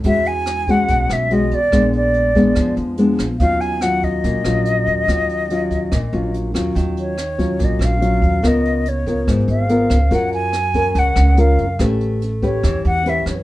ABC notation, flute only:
X:1
M:4/4
L:1/8
Q:1/4=143
K:Ebm
V:1 name="Flute"
=e ^g2 ^f2 e _e =d- | =d d4 z3 | f a g e4- e- | e6 z2 |
z d3 e f3 | e2 d2 z f3 | g a3 g2 f2 | z3 ^c2 g =e c |]